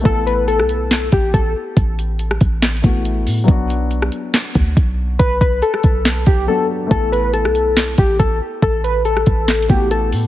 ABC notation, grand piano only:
X:1
M:4/4
L:1/8
Q:1/4=140
K:Amix
V:1 name="Grand piano"
[A,B,EA]8- | [A,B,EA]4- [A,B,EA] [A,B,EF]3 | [F,B,DF]8- | [F,B,DF]6 [F,B,DF]2 |
[A,B,EA]8- | [A,B,EA]4- [A,B,EA] [A,B,EF]3 |]